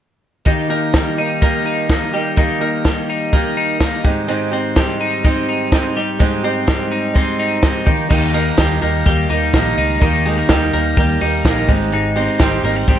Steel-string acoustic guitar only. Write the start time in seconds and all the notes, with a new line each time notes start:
0.45 D#3 A#3 D#4 G4
0.69 A#3 D#4 G4
0.94 D#3 A#3 D#4 G4
1.17 A#3 D#4 G4
1.41 D#3 A#3 D#4 G4
1.89 D#3 A#3 D#4 G4
2.13 A#3 D#4 G4
2.37 D#3 A#3 D#4 G4
2.60 A#3 D#4 G4
2.84 D#3 A#3 D#4 G4
3.33 D#3 A#3 D#4 G4
3.80 D#3 A#3 D#4 G4
4.04 C4 D#4 G4
4.27 G#3 C4 D#4 G4
4.51 C4 D#4 G4
4.76 G#3 C4 D#4 G4
5.24 G#3 C4 D#4 G4
5.72 G#3 C4 D#4 G4
5.96 C4 D#4 G4
6.19 G#3 C4 D#4 G4
6.43 C4 D#4 G4
6.67 G#3 C4 D#4 G4
7.14 G#3 C4 D#4 G4
7.61 G#3 C4 D#4 G4
7.86 D#3 A#3 D#4 G4
8.09 D#3 A#3 D#4 G4
8.33 A#3 D#4 G4
8.57 D#3 A#3 D#4 G4
8.81 A#3 D#4 G4
9.05 D#3 A#3 D#4 G4
9.30 A#3 D#4 G4
9.53 D#3 A#3 D#4 G4
10.01 D#3 A#3 D#4 G4
10.26 A#3 D#4 G4
10.49 D#3 A#3 D#4 G4
10.73 A#3 D#4 G4
10.97 D#3 A#3 D#4 G4
11.21 A#3 D#4 G4
11.45 D#3 A#3 D#4 G4
11.68 G#3 C4 D#4 G4
12.15 C4 D#4 G4
12.40 G#3 C4 D#4 G4
12.63 C4 D#4 G4
12.87 G#3 C4 D#4 G4